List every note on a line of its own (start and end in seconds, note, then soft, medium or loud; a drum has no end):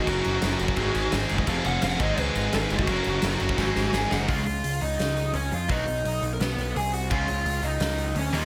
0.00 0.42 F#4 loud
0.06 0.19 F#1 loud
0.06 0.58 F#2 loud
0.06 0.59 C#3 loud
0.06 0.76 F#3 medium
0.06 0.58 F#3 loud
0.06 0.77 C#4 medium
0.06 0.77 F#4 loud
0.06 0.78 A#4 loud
0.06 kick loud
0.06 crash medium
0.25 0.37 F#1 medium
0.25 crash medium
0.42 0.54 F#1 medium
0.42 1.11 F#4 loud
0.42 snare loud
0.42 crash medium
0.59 0.72 F#1 medium
0.59 0.76 F#2 medium
0.59 0.77 C#3 medium
0.59 0.76 F#3 loud
0.59 crash medium
0.68 kick loud
0.76 0.89 G#1 loud
0.76 1.29 G#2 medium
0.76 1.29 D#3 medium
0.76 1.45 G#3 loud
0.76 1.28 G#3 loud
0.76 1.46 C4 loud
0.76 1.48 D#4 loud
0.76 1.48 G#4 loud
0.76 kick loud
0.76 crash medium
0.95 1.06 G#1 medium
0.95 crash medium
1.12 1.24 G#1 loud
1.12 snare loud
1.12 crash medium
1.29 1.42 F#1 loud
1.29 1.46 G#2 medium
1.29 1.47 D#3 medium
1.29 1.46 G#3 loud
1.29 crash medium
1.38 kick loud
1.46 1.59 F1 loud
1.46 1.99 F2 medium
1.46 2.00 C3 loud
1.46 1.98 F3 loud
1.46 2.00 F3 loud
1.46 1.99 C4 loud
1.46 2.00 F4 loud
1.46 kick loud
1.46 crash medium
1.50 2.00 G#4 loud
1.64 1.77 F1 medium
1.64 1.81 F#5 loud
1.64 crash medium
1.82 1.94 F1 loud
1.82 2.00 F#5 loud
1.82 snare loud
1.82 crash loud
1.99 2.12 G#1 loud
1.99 2.51 G#2 loud
1.99 2.52 D#3 loud
1.99 2.86 G#3 loud
1.99 2.53 G#3 loud
1.99 2.87 C4 loud
1.99 2.88 D#4 loud
1.99 2.19 D#5 loud
1.99 kick loud
1.99 crash medium
2.03 2.88 G#4 medium
2.17 2.29 C#2 loud
2.17 2.52 B4 loud
2.17 crash loud
2.35 2.47 G#1 loud
2.35 crash medium
2.52 2.65 G#1 medium
2.52 2.87 G#2 medium
2.52 2.87 D#3 medium
2.52 2.88 G#3 medium
2.52 2.71 B4 medium
2.52 snare loud
2.52 crash medium
2.70 2.82 F#1 loud
2.70 3.22 F#4 loud
2.70 crash medium
2.79 kick loud
2.87 2.99 F#1 loud
2.87 3.39 F#2 loud
2.87 3.40 C#3 loud
2.87 3.57 F#3 medium
2.87 3.39 F#3 loud
2.87 3.58 C#4 loud
2.87 3.58 F#4 loud
2.87 kick loud
2.87 crash medium
2.91 3.59 A#4 loud
3.04 3.18 F#1 loud
3.04 crash medium
3.22 3.35 F#1 medium
3.22 3.92 F#4 loud
3.22 snare loud
3.22 crash medium
3.40 3.52 F#1 medium
3.40 3.57 F#2 medium
3.40 3.58 C#3 medium
3.40 3.57 F#3 loud
3.40 crash medium
3.49 kick loud
3.58 3.70 G#1 loud
3.58 4.10 G#2 medium
3.58 4.10 D#3 loud
3.58 4.27 G#3 loud
3.58 4.09 G#3 loud
3.58 4.28 C4 loud
3.58 4.28 D#4 loud
3.58 4.29 G#4 loud
3.58 kick loud
3.58 snare medium
3.76 3.87 G#1 medium
3.76 snare medium
3.93 4.05 G#1 medium
3.93 4.10 G#4 medium
3.93 4.12 G#5 loud
3.93 snare loud
4.11 4.30 F#1 loud
4.11 4.29 G#2 medium
4.11 4.28 D#3 medium
4.11 4.27 G#3 medium
4.11 4.28 F#4 medium
4.11 4.29 F#5 loud
4.11 snare loud
4.27 4.45 C#2 medium
4.27 4.42 C#3 medium
4.27 4.43 G#3 medium
4.27 4.43 C#4 loud
4.27 4.43 C#4 medium
4.27 4.77 F4 medium
4.27 4.43 F4 medium
4.27 4.78 F5 loud
4.27 kick medium
4.27 open hi-hat medium
4.46 4.63 C#2 medium
4.46 open hi-hat medium
4.64 4.81 C#2 medium
4.64 open hi-hat medium
4.81 4.98 C#2 medium
4.81 5.31 D#4 medium
4.81 5.31 D#5 medium
4.81 open hi-hat medium
4.99 5.32 C#2 medium
4.99 snare loud
4.99 open hi-hat medium
5.17 open hi-hat medium
5.34 5.51 C#2 medium
5.34 5.50 C#4 medium
5.34 5.51 C#5 medium
5.34 open hi-hat medium
5.52 5.69 F2 medium
5.52 5.69 F4 medium
5.52 5.69 F5 medium
5.52 open hi-hat medium
5.69 5.86 B1 medium
5.69 5.83 B2 medium
5.69 5.84 D#3 medium
5.69 5.84 F#3 medium
5.69 5.84 B3 medium
5.69 6.30 D#4 medium
5.69 5.84 F#4 loud
5.69 6.30 D#5 loud
5.69 kick loud
5.69 open hi-hat medium
5.86 6.03 B1 medium
5.86 open hi-hat medium
6.05 6.21 B1 medium
6.05 open hi-hat medium
6.22 6.39 B1 medium
6.22 open hi-hat medium
6.33 6.40 A#4 medium
6.40 6.57 B1 medium
6.40 6.73 B3 medium
6.40 6.76 B4 medium
6.40 snare loud
6.40 open hi-hat medium
6.57 6.74 B1 medium
6.57 open hi-hat medium
6.76 7.09 C2 medium
6.76 6.92 G#4 medium
6.76 6.94 G#5 medium
6.76 open hi-hat medium
6.93 7.09 F#4 medium
6.93 7.10 F#5 medium
6.93 open hi-hat medium
7.11 7.27 C#2 medium
7.11 7.24 C#3 medium
7.11 7.25 C#3 medium
7.11 7.25 G#3 medium
7.11 7.25 C#4 loud
7.11 7.25 C#4 medium
7.11 7.60 F4 medium
7.11 7.25 F4 loud
7.11 7.65 F5 loud
7.11 kick loud
7.11 crash medium
7.28 7.45 C#2 medium
7.28 open hi-hat medium
7.45 7.62 C#2 medium
7.45 open hi-hat medium
7.62 7.79 C#2 medium
7.62 8.13 D#4 medium
7.62 8.17 D#5 medium
7.62 open hi-hat medium
7.80 8.13 C#2 medium
7.80 snare loud
7.80 open hi-hat medium
7.98 open hi-hat medium
8.15 8.32 D2 medium
8.15 8.33 C#4 medium
8.15 8.33 C#5 medium
8.15 open hi-hat medium
8.33 8.45 D#2 medium
8.33 8.45 D#3 medium
8.33 8.45 G3 medium
8.33 8.45 A#3 medium
8.33 8.45 A#3 loud
8.33 8.45 D#4 loud
8.33 8.45 D#4 medium
8.33 8.45 F4 medium
8.33 8.45 F5 medium
8.33 open hi-hat medium